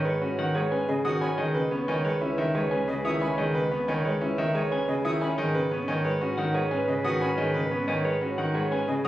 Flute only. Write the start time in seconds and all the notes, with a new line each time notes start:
0.88 D#5
1.05 D#6
1.22 B5
1.88 G#5
2.88 D#5
3.05 D#6
3.22 B5
3.88 G#5
4.88 D#5
5.05 D#6
5.21 B5
5.88 G#5
6.88 D#5
7.04 D#6
7.21 B5
7.88 G#5
8.88 D#5
9.04 D#6